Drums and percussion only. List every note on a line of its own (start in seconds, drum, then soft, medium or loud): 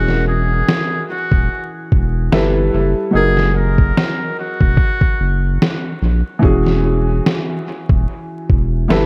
0.08 snare soft
0.68 snare loud
1.32 kick loud
1.92 kick medium
2.32 snare loud
3.37 snare soft
3.78 kick medium
3.97 snare loud
4.61 kick medium
4.77 kick medium
5.01 kick medium
5.62 snare loud
6.43 kick medium
6.66 snare soft
7.26 snare loud
7.89 kick loud
8.50 kick medium
8.90 snare loud